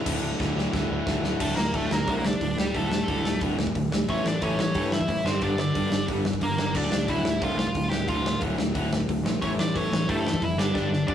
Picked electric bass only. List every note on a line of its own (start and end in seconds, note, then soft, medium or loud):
0.06 0.17 D1 loud
0.21 0.32 D1 medium
0.40 0.50 D1 loud
0.55 0.66 D1 medium
0.73 0.84 D1 loud
0.89 1.00 D1 medium
1.07 1.17 D1 medium
1.22 1.33 D1 medium
1.40 1.54 D1 medium
1.57 1.71 D1 medium
1.74 1.87 D1 medium
1.90 2.04 D1 medium
2.07 2.34 C2 loud
2.41 2.54 D1 medium
2.57 2.71 D1 medium
2.75 3.01 D1 loud
3.08 3.21 D1 medium
3.23 3.37 D1 medium
3.41 3.54 D1 loud
3.57 3.71 D1 medium
3.75 3.88 D1 medium
3.90 4.04 D1 medium
4.08 4.22 A1 loud
4.24 4.37 A1 medium
4.42 4.55 A1 medium
4.58 4.71 A1 medium
4.75 5.02 G2 loud
5.09 5.22 A1 medium
5.24 5.38 G1 medium
5.42 5.68 G1 loud
5.75 5.88 G1 medium
5.91 6.04 G1 medium
6.09 6.22 G1 loud
6.24 6.38 G1 medium
6.42 6.55 G1 medium
6.58 6.71 G1 medium
6.75 6.88 D1 loud
6.91 7.05 D1 medium
7.08 7.22 D1 medium
7.24 7.38 D1 medium
7.42 7.68 C2 loud
7.75 7.88 D1 medium
7.92 8.05 D1 medium
8.08 8.35 D1 loud
8.42 8.55 D1 medium
8.57 8.71 D1 medium
8.75 8.88 D1 medium
8.91 9.04 D1 medium
9.09 9.22 D1 medium
9.23 9.37 A#1 medium
9.43 9.55 A1 loud
9.58 9.71 A1 medium
9.75 9.88 A1 medium
9.91 10.05 A1 medium
10.09 10.35 G2 loud
10.41 10.57 F1 medium
10.57 10.70 G1 medium
10.75 11.02 G1 loud
11.08 11.15 G1 medium